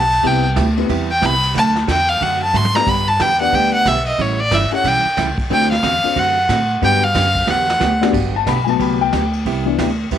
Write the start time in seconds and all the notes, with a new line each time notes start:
Already playing: B1 A5
0.11 ride
0.23 C2 C3 G3 B3 C4 E4 G4 B4 G5, kick, ride
0.56 D2 C3 G3 B3 E4 G4, kick, snare, hi-hat pedal, ride
0.76 B3 C4 E4 G4 B4, ride
0.89 E2 C3 G3 B3 E4 G4, kick, ride
1.11 G5
1.21 C2 C3 G3 B3 E4 G4 B5, kick, snare, hi-hat pedal, ride
1.43 ride
1.54 D2 D3 F#3 A3 D4 F#4 A5, kick, ride
1.76 snare
1.87 E2 D3 F#3 A3 D4 F#4 G5, kick, snare, hi-hat pedal, ride
2.09 F5, ride
2.21 F#2 D3 F#3 A3 D4 F#4 F#5, kick, ride
2.43 A5
2.53 G#2 D3 F#3 A3 D4 F#4 C6, hi-hat pedal
2.65 high tom
2.73 B3 D4 G4 B4 D5 A#5, snare
2.87 G2 D3 G3 B3 D4 G4 B5, kick, crash
3.08 A5
3.19 E2 D3 G3 B3 D4 G4 G5, kick, snare, hi-hat pedal, ride
3.40 B3 D4 G4 B4 D5 F#5
3.53 D2 D3 G3 B3 D4 G4 G5, kick, ride
3.74 F#5
3.85 B1 D3 G3 B3 D4 G4 E5, kick, snare, hi-hat pedal, ride
4.06 D#5, ride
4.18 A1 E3 G3 C#4 E4 A4 C#5, kick, ride
4.40 D5
4.51 G1 E3 G3 C#4 E4 A4 E5, kick, snare, hi-hat pedal, ride
4.71 C#4 E4 G4 A4 C#5 F#5, muted upright bass stroke
4.84 B1 E3 G3 C#4 E4 A4 G5, kick, ride
5.05 muted upright bass stroke
5.17 C#2 E3 G3 C#4 E4 A4, kick, snare, hi-hat pedal, ride
5.38 muted upright bass stroke, kick, ride
5.50 D2 D3 A3 C4 D4 F#4 A4 C5 G5, kick, ride
5.61 snare
5.72 F5, snare
5.83 E2 D3 A3 C4 F#4 A4, kick, snare, hi-hat pedal, ride
6.03 C4 D4 F#4 A4 C5, muted upright bass stroke, ride
6.16 F#2 D3 A3 C4 F#4 A4 F#5, kick, ride
6.49 A2 D3 A3 C4 F#4 A4, kick, snare, hi-hat pedal, ride
6.81 G2 D3 F#3 B3 D4 F#4 G4 B4 G5, kick, ride
7.04 F5
7.15 F#2 D3 F#3 B3 D4 G4, kick, snare, hi-hat pedal, ride
7.35 kick, ride
7.47 E2 D3 F#3 B3 D4 G4 F#5, snare
7.70 snare
7.80 D2 D3 F#3 B3 D4 G4, snare, hi-hat pedal
8.00 B3 D4 F#4 G4 D5, snare
8.13 G1 D3 F#3 B3 D4 G4, kick, crash
8.36 A5
8.46 B1 D3 F#3 B3 D4 G4 B5, kick, snare, hi-hat pedal, ride
8.64 F#3 A3 B3 G#5, ride
8.69 A5
8.79 C2 D3 F#3 B3 D4 G4 B5, kick, ride
9.01 G5
9.12 D2 D3 F#3 B3 D4 G4, kick, snare, hi-hat pedal, ride
9.33 ride
9.45 C2 C3 G3 B3 E4 G4, kick, ride
9.65 E3 B3 D4
9.78 D2 C3 G3 B3 E4 G4, kick, snare, hi-hat pedal, ride
10.11 E2 C3 G3 B3 E4 G4, kick, ride